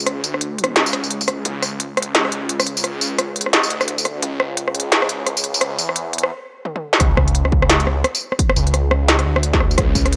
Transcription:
Already playing: detuned saw bass C#2
0.07 cross-stick, closed hi-hat
0.24 detuned saw bass D2, closed hi-hat, tambourine
0.34 cross-stick
0.41 closed hi-hat
0.58 closed hi-hat
0.64 cross-stick, closed hi-hat
0.76 detuned saw bass C#2, snare, closed hi-hat
0.86 tambourine
0.93 cross-stick, closed hi-hat
1.04 tambourine
1.11 closed hi-hat
1.21 kick, tambourine
1.28 kick, cross-stick, closed hi-hat
1.45 detuned saw bass C#2, kick, closed hi-hat
1.62 cross-stick, tambourine
1.80 closed hi-hat
1.97 detuned saw bass C#2, cross-stick, closed hi-hat
2.02 closed hi-hat
2.15 snare, closed hi-hat
2.25 cross-stick
2.32 closed hi-hat
2.49 closed hi-hat
2.60 cross-stick, tambourine
2.67 closed hi-hat
2.77 tambourine
2.84 cross-stick, closed hi-hat
3.01 detuned saw bass C#2, tambourine
3.19 cross-stick, closed hi-hat
3.36 closed hi-hat
3.41 closed hi-hat
3.46 cross-stick
3.53 snare, closed hi-hat
3.63 tambourine
3.70 detuned saw bass D2, closed hi-hat
3.81 cross-stick, tambourine
3.88 closed hi-hat
3.98 tambourine
4.05 kick, cross-stick, closed hi-hat
4.22 detuned saw bass C#2, kick, closed hi-hat
4.40 cross-stick
4.57 closed hi-hat
4.68 cross-stick
4.75 detuned saw bass C#2, closed hi-hat
4.80 closed hi-hat
4.92 snare, closed hi-hat
5.02 cross-stick
5.09 closed hi-hat
5.27 cross-stick, closed hi-hat
5.37 tambourine
5.44 closed hi-hat
5.54 tambourine
5.61 cross-stick, closed hi-hat
5.79 detuned saw bass E2, tambourine
5.89 cross-stick
5.96 closed hi-hat
6.13 closed hi-hat
6.18 closed hi-hat
6.23 cross-stick
6.65 high tom
6.76 high tom
6.93 snare
7.00 detuned saw bass C#2, kick, cross-stick, closed hi-hat
7.17 kick, cross-stick
7.28 closed hi-hat
7.35 closed hi-hat
7.45 cross-stick
7.52 kick
7.62 cross-stick
7.70 detuned saw bass C#2, snare, closed hi-hat
7.80 closed hi-hat
7.87 cross-stick
8.04 cross-stick, closed hi-hat
8.15 tambourine
8.32 cross-stick
8.39 kick, closed hi-hat
8.49 cross-stick
8.56 detuned saw bass C#2, tambourine
8.67 closed hi-hat
8.74 cross-stick, closed hi-hat
8.91 cross-stick
9.08 snare, closed hi-hat
9.19 cross-stick, closed hi-hat
9.26 detuned saw bass D2
9.36 cross-stick
9.43 closed hi-hat
9.53 kick, snare
9.60 cross-stick
9.71 tambourine
9.78 detuned saw bass C#2, kick, cross-stick, closed hi-hat
9.95 kick, tambourine
10.06 cross-stick, closed hi-hat
10.13 closed hi-hat

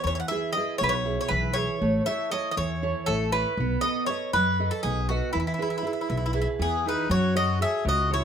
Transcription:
0.04 upright bass E2, nylon-string guitar E3, bouzouki C#5
0.15 bouzouki C#5
0.20 bouzouki F#5
0.28 nylon-string guitar E4 G#4 B4, bouzouki E5
0.53 nylon-string guitar E4, bouzouki D#5
0.57 nylon-string guitar G#4 B4
0.78 upright bass B1, nylon-string guitar B2, bouzouki C#5
0.84 bouzouki B4
0.89 bouzouki C#5
1.05 nylon-string guitar E4 G#4 B4
1.21 bouzouki C#5
1.28 upright bass B1, nylon-string guitar E3, bouzouki B4
1.53 nylon-string guitar E4 G#4 B4, bouzouki C#5
1.81 upright bass A1, nylon-string guitar A3
2.06 nylon-string guitar E4 A4 C#5, bouzouki E5
2.31 nylon-string guitar E4 A4 C#5, bouzouki D#5
2.51 bouzouki D#5
2.57 upright bass E2, nylon-string guitar E3, bouzouki C#5
2.82 nylon-string guitar E4 A4 C#5
3.06 upright bass A1, nylon-string guitar A3, bouzouki A4
3.32 nylon-string guitar E4 A4 C#5, bouzouki B4
3.57 upright bass B1, nylon-string guitar B3
3.81 nylon-string guitar A4 B4, bouzouki D#5
3.85 nylon-string guitar D#5
4.06 nylon-string guitar A4 B4 D#5, bouzouki C#5
4.33 upright bass F#2, nylon-string guitar F#3, bouzouki B4
4.60 nylon-string guitar A4 B4 D#5
4.71 bouzouki A4
4.83 upright bass B1, nylon-string guitar B3, bouzouki G#4
5.09 bouzouki F#4, nylon-string guitar A4 B4 D#5
5.33 upright bass E2, nylon-string guitar E3, bouzouki E4
5.40 bouzouki E4
5.47 bouzouki E4
5.54 bouzouki E4
5.58 nylon-string guitar E4 G#4 B4, bouzouki E4
5.70 bouzouki E4
5.78 bouzouki E4
5.83 nylon-string guitar E4 G#4 B4
5.87 bouzouki E4
5.93 bouzouki E4
6.01 bouzouki E4
6.09 upright bass B1, nylon-string guitar B2, bouzouki E4
6.17 bouzouki E4
6.26 bouzouki E4
6.33 bouzouki E4, nylon-string guitar E4 G#4 B4
6.41 bouzouki E4
6.59 upright bass E2, nylon-string guitar E3, accordion B3, bouzouki G#4
6.85 accordion D#4, nylon-string guitar E4 G#4 B4, bouzouki B4
7.10 upright bass F#2, nylon-string guitar F#3, accordion F#4, bouzouki C#5
7.35 nylon-string guitar F#4 A4 C#5, accordion F#4, bouzouki D#5
7.61 nylon-string guitar F#4 A4 C#5, accordion G#4, bouzouki E5
7.85 upright bass C#2, nylon-string guitar C#3, accordion F#4, bouzouki D#5
8.10 accordion E4, nylon-string guitar F#4 A4 C#5, bouzouki C#5

